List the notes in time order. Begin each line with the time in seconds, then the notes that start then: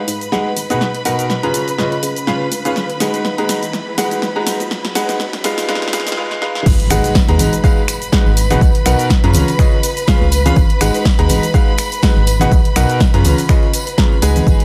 Already playing: B4 B5, riser
0.08 G#2, open hi-hat, shaker
0.21 closed hi-hat, shaker
0.32 D#2 G#3 D#4 F#4 G#4 B4 F#5, snare, shaker
0.56 G#1, open hi-hat, shaker
0.70 D#2 B2 D#4 F#4 G#4 B4 F#5, closed hi-hat, shaker
0.81 B1, snare, shaker
0.95 closed hi-hat
1.05 B1 B2 D#4 F#4 A#4 B4 F#5, open hi-hat, shaker
1.19 closed hi-hat, shaker
1.30 snare, shaker
1.43 F#2 C#3 C#4 F4 G#4 B4 A#5, closed hi-hat
1.54 C#2, open hi-hat, shaker
1.68 open hi-hat, shaker
1.78 C#3 C#4 F4 G#4 B4 D#5, snare, shaker
1.92 closed hi-hat
2.03 C#3, open hi-hat, shaker
2.16 closed hi-hat, shaker
2.27 G#2 C#3 C#4 F4 G#4 B4 F5, snare, shaker
2.51 C#2, open hi-hat, shaker
2.65 G#2 C#4 F4 G#4 B4 F5, closed hi-hat, shaker
2.76 G#1, snare, shaker
2.90 closed hi-hat
3.00 G#1 G#3 D#4 F#4 G#4 B4 F#5, snare, open hi-hat, shaker
3.14 closed hi-hat, shaker
3.25 snare, shaker
3.38 D#2 G#3 D#4 F#4 G#4 B4 A#5, closed hi-hat
3.49 G#1, snare, open hi-hat, shaker
3.63 closed hi-hat, shaker
3.73 snare, shaker
3.98 G#2 G#3 D#4 F#4 G#4 B4 F#5, snare, open hi-hat, shaker
4.11 closed hi-hat, shaker
4.22 D#2, snare, shaker
4.36 G#3 D#4 F#4 G#4 B4 A#5
4.47 G#1, snare, open hi-hat, shaker
4.60 D#2, closed hi-hat, shaker
4.71 B1, snare, shaker
4.85 snare, closed hi-hat
4.95 B1 G#3 D#4 F#4 G#4 B4 F#5, snare, open hi-hat, shaker
5.09 snare, closed hi-hat, shaker
5.20 snare, shaker
5.33 F#2, snare, closed hi-hat
5.44 G#3 D#4 F4 G#4 B4 F5, snare, open hi-hat, shaker
5.58 snare, open hi-hat, shaker
5.69 G#3 D#4 F4 G#4 B4 F5, snare, shaker
5.75 snare
5.82 snare, closed hi-hat
5.88 snare
5.93 G#3 D#4 F4 G#4 B4 F5, snare, open hi-hat, shaker
6.00 snare
6.07 snare, closed hi-hat, shaker
6.12 snare
6.17 G#3 D#4 F4 G#4 B4 F5
6.31 snare
6.42 G#3 D#4 F4 G#4 B4 F5, snare
6.55 snare
6.66 G#1 B4 B5, kick, crash, tambourine, impact, shaker
6.80 closed hi-hat, tambourine
6.90 G#1 G#3 D#4 F#4 G#4 B4 F#5, finger snap, open hi-hat, tambourine, shaker
7.04 closed hi-hat, tambourine, shaker
7.15 kick, snare, tambourine, shaker
7.28 D#2 G#3 D#4 F#4 G#4 B4 A#5, closed hi-hat, tambourine
7.39 G#1, open hi-hat, tambourine, high conga, shaker
7.53 closed hi-hat, tambourine, shaker
7.64 G#3 D#4 F#4 G#4 B4 F5, kick, tambourine, shaker
7.77 tambourine
7.88 finger snap, open hi-hat, tambourine, shaker
8.02 closed hi-hat, tambourine, shaker
8.12 G#3 D#4 F#4 G#4 B4 F#5, kick, snare, tambourine, shaker
8.26 G#1, tambourine
8.37 open hi-hat, tambourine, shaker
8.50 B2 D#4 F#4 G#4 B4 F#5, closed hi-hat, tambourine, high conga, shaker
8.61 B1, kick, tambourine, shaker
8.75 closed hi-hat, tambourine
8.86 B1 B2 D#4 F#4 A#4 B4 F#5, finger snap, open hi-hat, tambourine, shaker
8.99 closed hi-hat, tambourine, shaker
9.10 kick, snare, tambourine, shaker
9.24 F#2 C#3 C#4 F4 G#4 B4 A#5, closed hi-hat, tambourine
9.33 C#2, open hi-hat, tambourine, high conga, shaker
9.48 open hi-hat, tambourine, shaker
9.59 C#3 C#4 F4 G#4 B4 D#5, finger snap, kick, tambourine, shaker
9.72 tambourine
9.83 open hi-hat, tambourine, shaker
9.97 closed hi-hat, tambourine, shaker
10.07 C#3 C#4 F4 G#4 B4 F5, kick, snare, tambourine, shaker
10.21 C#2, tambourine
10.32 open hi-hat, tambourine, shaker
10.46 C#4 F4 G#4 B4 F5, closed hi-hat, tambourine, high conga, shaker
10.56 G#1, kick, tambourine, shaker
10.69 closed hi-hat, tambourine
10.81 G#1 G#3 D#4 F#4 G#4 B4 F#5, finger snap, open hi-hat, tambourine, shaker
10.94 closed hi-hat, tambourine, shaker
11.05 kick, snare, tambourine, shaker
11.18 D#2 G#3 D#4 F#4 G#4 B4 A#5, closed hi-hat, tambourine
11.29 G#1, open hi-hat, tambourine, high conga, shaker
11.42 closed hi-hat, tambourine, shaker
11.54 G#3 D#4 F#4 G#4 B4 F5, kick, tambourine, shaker
11.68 tambourine
11.78 finger snap, open hi-hat, tambourine, shaker
11.92 closed hi-hat, tambourine, shaker
12.02 G#3 D#4 F#4 G#4 B4 F#5, kick, snare, tambourine, shaker
12.16 G#1, tambourine
12.27 open hi-hat, tambourine, shaker
12.39 B2 D#4 F#4 G#4 B4 F#5, closed hi-hat, tambourine, high conga, shaker
12.51 B1, kick, tambourine, shaker
12.65 closed hi-hat, tambourine
12.76 B1 B2 D#4 F#4 A#4 B4 F#5, finger snap, open hi-hat, tambourine, shaker
12.89 closed hi-hat, tambourine, shaker
13.00 kick, snare, tambourine, shaker
13.14 F#2 C#3 C#4 F4 G#4 B4 A#5, closed hi-hat, tambourine
13.24 C#2, open hi-hat, tambourine, high conga, shaker
13.38 open hi-hat, tambourine, shaker
13.49 C#3 C#4 F4 G#4 B4 D#5, finger snap, kick, tambourine, shaker
13.63 tambourine
13.74 open hi-hat, tambourine, shaker
13.87 closed hi-hat, tambourine, shaker
13.98 C#3 C#4 F4 G#4 B4 A#5, kick, snare, tambourine, shaker
14.12 tambourine
14.22 C#2 G#3 D#4 F#4 G#4 B4 G#5, open hi-hat, tambourine, shaker
14.36 closed hi-hat, tambourine, high conga, shaker
14.47 G#1 B4 B5, kick, tambourine, shaker
14.60 closed hi-hat, tambourine